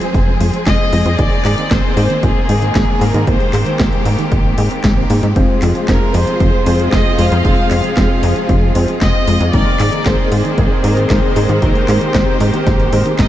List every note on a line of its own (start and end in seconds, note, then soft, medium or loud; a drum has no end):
0.00 1.15 F3 medium
0.00 0.09 F3 loud
0.00 9.50 G#3 medium
0.00 5.32 C4 medium
0.00 3.24 G#4 medium
0.00 1.15 C5 medium
0.00 closed hi-hat medium
0.14 0.37 F1 medium
0.14 0.22 C4 medium
0.14 kick loud
0.14 closed hi-hat medium
0.40 0.52 F2 medium
0.40 0.45 G#3 loud
0.40 open hi-hat loud
0.53 0.58 F3 medium
0.53 closed hi-hat medium
0.67 0.78 F1 medium
0.67 0.71 C4 loud
0.67 1.15 D#5 loud
0.67 kick loud
0.67 snare loud
0.67 clap medium
0.67 closed hi-hat medium
0.93 1.04 F2 medium
0.93 1.00 G#3 loud
0.93 open hi-hat loud
1.06 1.17 F2 loud
1.06 1.13 F3 loud
1.06 closed hi-hat medium
1.19 1.30 G#1 loud
1.19 5.32 D#3 medium
1.19 5.32 A#3 medium
1.19 1.26 A#3 medium
1.19 1.71 D5 loud
1.19 kick loud
1.19 closed hi-hat medium
1.45 1.56 G#2 medium
1.45 1.49 G#3 loud
1.45 clap medium
1.45 open hi-hat medium
1.58 1.62 D#3 medium
1.58 closed hi-hat medium
1.71 1.82 G#1 medium
1.71 1.75 A#3 loud
1.71 2.23 C5 loud
1.71 kick loud
1.71 snare loud
1.71 clap medium
1.71 closed hi-hat medium
1.97 2.08 G#2 loud
1.97 2.04 G#3 loud
1.97 open hi-hat loud
2.10 2.17 D#3 loud
2.10 closed hi-hat medium
2.23 2.34 G#1 loud
2.23 2.30 A#3 medium
2.23 3.01 G#4 loud
2.23 kick loud
2.23 closed hi-hat medium
2.49 2.72 G#2 medium
2.49 2.54 G#3 loud
2.49 open hi-hat loud
2.62 2.67 D#3 medium
2.62 closed hi-hat soft
2.75 2.87 G#1 loud
2.75 2.80 A#3 loud
2.75 kick loud
2.75 snare loud
2.75 clap medium
2.75 closed hi-hat medium
3.01 3.13 G#2 loud
3.01 3.09 G#3 loud
3.01 3.27 A#4 medium
3.01 open hi-hat loud
3.14 3.26 G#2 loud
3.14 3.22 D#3 loud
3.14 closed hi-hat medium
3.27 3.39 G#1 loud
3.27 3.35 A#3 medium
3.27 5.34 G4 medium
3.27 4.02 C5 medium
3.27 kick loud
3.27 closed hi-hat medium
3.40 closed hi-hat soft
3.53 3.65 G#2 medium
3.53 3.58 G#3 loud
3.53 clap medium
3.53 open hi-hat loud
3.66 3.71 D#3 medium
3.66 closed hi-hat medium
3.79 3.91 G#1 medium
3.79 3.84 A#3 loud
3.79 kick loud
3.79 snare loud
3.79 clap medium
3.79 closed hi-hat medium
3.92 closed hi-hat soft
4.05 4.17 G#2 loud
4.05 4.13 G#3 loud
4.05 open hi-hat loud
4.19 4.26 D#3 loud
4.19 closed hi-hat medium
4.32 4.54 G#1 medium
4.32 4.39 A#3 medium
4.32 kick loud
4.32 closed hi-hat medium
4.58 4.69 G#2 loud
4.58 4.65 G#4 medium
4.58 open hi-hat loud
4.71 4.78 C4 medium
4.71 closed hi-hat medium
4.84 5.06 G#1 medium
4.84 4.95 G#3 medium
4.84 kick loud
4.84 snare loud
4.84 clap medium
4.84 closed hi-hat medium
4.97 5.01 C4 medium
5.10 5.21 G#2 loud
5.10 5.14 A#3 loud
5.10 open hi-hat loud
5.23 5.34 G#2 medium
5.23 5.30 G#3 medium
5.23 closed hi-hat medium
5.36 5.47 F1 loud
5.36 9.50 C3 medium
5.36 9.50 F3 medium
5.36 6.63 G#3 medium
5.36 5.44 C4 medium
5.36 6.63 C4 medium
5.36 9.50 F4 medium
5.36 6.63 F4 medium
5.36 9.50 G#4 medium
5.36 6.63 C5 loud
5.36 kick loud
5.36 closed hi-hat medium
5.62 5.74 F2 medium
5.62 5.67 G#3 loud
5.62 clap medium
5.62 open hi-hat loud
5.75 5.80 F3 medium
5.75 closed hi-hat soft
5.88 6.00 F1 medium
5.88 5.93 C4 loud
5.88 6.13 A#4 medium
5.88 kick loud
5.88 snare loud
5.88 clap medium
5.88 closed hi-hat medium
6.14 6.26 F2 loud
6.14 6.22 G#3 loud
6.14 6.93 C5 loud
6.14 open hi-hat loud
6.27 6.35 F3 loud
6.27 closed hi-hat medium
6.40 6.52 F1 loud
6.40 6.48 C4 medium
6.40 kick loud
6.40 closed hi-hat medium
6.66 6.89 F2 medium
6.66 6.71 G#3 loud
6.66 7.42 G#3 medium
6.66 7.42 C4 medium
6.66 7.42 F4 medium
6.66 7.42 C5 medium
6.66 open hi-hat loud
6.79 6.84 F3 medium
6.79 closed hi-hat medium
6.92 7.04 F1 loud
6.92 6.97 C4 loud
6.92 7.19 D#5 loud
6.92 kick loud
6.92 snare loud
6.92 clap medium
6.92 closed hi-hat medium
7.19 7.30 F2 loud
7.19 7.26 G#3 loud
7.19 8.23 F5 loud
7.19 open hi-hat loud
7.32 7.43 F2 loud
7.32 7.39 F3 loud
7.32 closed hi-hat medium
7.45 7.56 F1 loud
7.45 8.72 G#3 medium
7.45 8.72 C4 medium
7.45 7.52 C4 medium
7.45 8.72 F4 medium
7.45 8.72 C5 medium
7.45 kick loud
7.45 closed hi-hat medium
7.71 7.82 F2 loud
7.71 7.75 G#3 loud
7.71 clap medium
7.71 open hi-hat loud
7.84 7.88 F3 medium
7.84 closed hi-hat medium
7.97 8.08 F1 medium
7.97 8.02 C4 loud
7.97 kick loud
7.97 snare loud
7.97 clap medium
7.97 closed hi-hat medium
8.23 8.34 F2 loud
8.23 8.30 G#3 loud
8.23 open hi-hat loud
8.36 8.44 F3 loud
8.36 closed hi-hat medium
8.49 8.72 F1 medium
8.49 8.57 C4 medium
8.49 kick loud
8.49 closed hi-hat medium
8.75 8.87 F2 medium
8.75 8.80 G#3 loud
8.75 9.50 G#3 medium
8.75 9.50 C4 medium
8.75 9.50 F4 medium
8.75 9.50 C5 medium
8.75 open hi-hat loud
8.88 8.93 F3 medium
8.88 closed hi-hat medium
9.01 9.13 F1 medium
9.01 9.06 C4 loud
9.01 9.50 D#5 loud
9.01 kick loud
9.01 snare loud
9.01 clap medium
9.01 closed hi-hat medium
9.27 9.39 F2 medium
9.27 9.35 G#3 loud
9.27 open hi-hat loud
9.40 9.52 F2 loud
9.40 9.48 F3 loud
9.40 closed hi-hat medium
9.53 9.65 G#1 loud
9.53 13.28 D#3 medium
9.53 10.81 G#3 medium
9.53 13.28 G#3 medium
9.53 9.61 A#3 medium
9.53 13.28 A#3 medium
9.53 10.81 C4 medium
9.53 13.28 C4 medium
9.53 10.81 D#4 medium
9.53 11.60 G#4 loud
9.53 10.81 A#4 loud
9.53 10.06 D5 loud
9.53 kick loud
9.53 closed hi-hat medium
9.80 9.91 G#2 medium
9.80 9.84 G#3 loud
9.80 clap medium
9.80 open hi-hat loud
9.93 9.97 D#3 medium
9.93 closed hi-hat medium
10.06 10.17 G#1 medium
10.06 10.10 A#3 loud
10.06 10.31 C5 loud
10.06 kick loud
10.06 snare loud
10.06 clap medium
10.06 closed hi-hat medium
10.32 10.43 G#2 loud
10.32 10.39 G#3 loud
10.32 13.15 C5 loud
10.32 open hi-hat loud
10.45 10.52 D#3 loud
10.45 closed hi-hat medium
10.58 10.69 G#1 loud
10.58 10.65 A#3 medium
10.58 kick loud
10.58 closed hi-hat medium
10.84 11.07 G#2 medium
10.84 10.88 G#3 loud
10.84 11.59 G#3 medium
10.84 11.59 C4 medium
10.84 11.59 D#4 medium
10.84 11.59 A#4 loud
10.84 open hi-hat loud
10.97 11.01 D#3 medium
10.97 closed hi-hat medium
11.10 11.21 G#1 loud
11.10 11.14 A#3 loud
11.10 kick loud
11.10 snare loud
11.10 clap medium
11.10 closed hi-hat medium
11.36 11.47 G#2 loud
11.36 11.44 G#3 loud
11.36 open hi-hat loud
11.49 11.61 G#2 loud
11.49 11.57 D#3 loud
11.49 closed hi-hat medium
11.62 11.74 G#1 loud
11.62 12.90 G#3 medium
11.62 11.70 A#3 medium
11.62 12.90 C4 medium
11.62 12.90 D#4 medium
11.62 13.28 G4 medium
11.62 12.90 A#4 loud
11.62 kick loud
11.62 closed hi-hat medium
11.75 closed hi-hat soft
11.88 12.00 G#2 medium
11.88 11.93 G#3 loud
11.88 clap medium
11.88 open hi-hat loud
12.01 12.06 D#3 medium
12.01 closed hi-hat medium
12.14 12.26 G#1 medium
12.14 12.19 A#3 loud
12.14 kick loud
12.14 snare loud
12.14 clap loud
12.14 closed hi-hat medium
12.40 12.52 G#2 loud
12.40 12.48 G#3 loud
12.40 open hi-hat loud
12.54 12.61 D#3 loud
12.54 closed hi-hat medium
12.66 12.89 G#1 medium
12.66 12.74 A#3 medium
12.66 kick loud
12.66 snare medium
12.66 closed hi-hat medium
12.80 closed hi-hat soft
12.93 13.04 G#2 medium
12.93 13.04 D#3 medium
12.93 13.28 G#3 medium
12.93 13.28 C4 medium
12.93 13.28 D#4 medium
12.93 13.28 A#4 medium
12.93 open hi-hat loud
13.06 13.13 D#3 loud
13.06 closed hi-hat medium
13.19 13.28 G#1 medium
13.19 13.26 D#3 medium
13.19 13.28 D#5 loud
13.19 kick loud
13.19 snare loud
13.19 clap medium
13.19 closed hi-hat medium